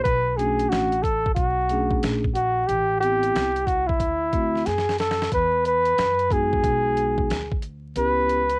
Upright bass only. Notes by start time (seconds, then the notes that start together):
0.05 B1
0.72 A1
1.37 B1
2.03 A#1
2.69 A1
3.35 C2
4.00 D2
4.67 F#2
5.32 E2
5.98 F#2
6.64 B1
7.30 D2
7.96 C#2